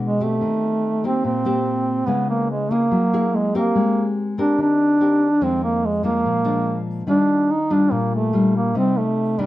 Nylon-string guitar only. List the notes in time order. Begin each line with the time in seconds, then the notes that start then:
Already playing: B2 G#3 D4 F#4
0.20 C4 G4
0.41 D#3
1.04 A#3 C4 G4
1.24 A#2
1.45 A#3 C4 G4
2.07 C#3 G#3 B3 E4
2.70 A#3 E4 G#4
2.91 F#3
3.13 A#3 E4 G#4
3.55 C4 G4 A#4
3.75 G#3
4.38 C4 G4 A#4
4.58 D#3
5.01 C4 G4 A#4
5.41 F2 D#3 G#3 C4
6.03 F3 G#3 D4
6.25 A#2
6.44 F3 G#3 D4
7.07 D#3 G3 D4 F4
7.70 G3 D4 F4
7.91 A#2
8.33 G3 D4 F4
8.74 C3 G3 D#4
9.39 D#3 A3 D4